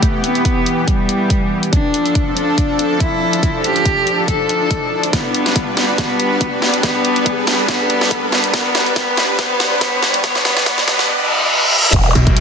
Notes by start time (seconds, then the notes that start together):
Already playing: E3 A3 B3 G4, riser
0.02 kick, closed hi-hat
0.24 B3, closed hi-hat
0.35 closed hi-hat
0.45 kick, closed hi-hat
0.66 closed hi-hat
0.88 G3, kick, closed hi-hat
1.09 closed hi-hat
1.30 kick, closed hi-hat
1.63 closed hi-hat
1.73 F3 D4 A4, kick, closed hi-hat
1.94 closed hi-hat
2.06 closed hi-hat
2.15 kick, closed hi-hat
2.37 D4, closed hi-hat
2.58 kick, closed hi-hat
2.79 closed hi-hat
3.00 E4, kick, closed hi-hat
3.33 closed hi-hat
3.43 kick, closed hi-hat
3.64 G4, closed hi-hat
3.76 closed hi-hat
3.85 kick, closed hi-hat
4.07 closed hi-hat
4.28 A4, kick, closed hi-hat
4.49 closed hi-hat
4.71 kick, closed hi-hat
5.03 closed hi-hat
5.13 G3 B3 B4, kick, snare, closed hi-hat
5.34 closed hi-hat
5.46 snare, closed hi-hat
5.56 kick, closed hi-hat
5.77 B3, snare, closed hi-hat
5.98 B3, kick, snare, closed hi-hat
6.20 closed hi-hat
6.41 kick, closed hi-hat
6.62 B3, snare
6.74 closed hi-hat
6.83 B3, kick, snare, closed hi-hat
7.05 closed hi-hat
7.16 closed hi-hat
7.26 kick, closed hi-hat
7.47 B3, snare, closed hi-hat
7.68 B3, kick, snare, closed hi-hat
7.90 closed hi-hat
8.01 snare
8.11 kick, closed hi-hat
8.32 B3, snare
8.44 closed hi-hat
8.53 B3, kick, snare, closed hi-hat
8.75 snare, closed hi-hat
8.86 closed hi-hat
8.96 B3, kick, snare, closed hi-hat
9.17 snare, closed hi-hat
9.39 B3, kick, snare, closed hi-hat
9.60 snare, closed hi-hat
9.81 B3, kick, snare, closed hi-hat
10.02 snare
10.14 closed hi-hat
10.24 B3, kick, snare, closed hi-hat
10.35 snare
10.45 B3, snare, closed hi-hat
10.57 snare, closed hi-hat
10.66 B3, kick, snare, closed hi-hat
10.78 snare
10.88 B3, snare, closed hi-hat
10.99 snare
11.09 reverse cymbal
11.73 high tom
11.84 mid tom
11.94 E1 B3 E4 G4, kick, closed hi-hat, crash, impact
12.15 B1, closed hi-hat
12.27 kick, closed hi-hat
12.37 closed hi-hat